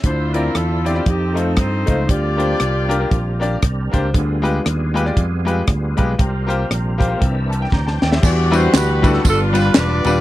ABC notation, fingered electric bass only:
X:1
M:4/4
L:1/8
Q:"Swing" 1/4=117
K:Cmix
V:1 name="Fingered electric bass" clef=bass
D,,2 E,,2 F,,2 G,, _D,, | D,,2 C,,2 B,,,2 C,, _D,, | D,,2 _E,,2 F,,2 D,, =B,,, | C,,2 B,,,2 C,,2 D,, _E,, |
[K:Em] E,,2 D,,2 G,,,2 E,,, _E,,, |]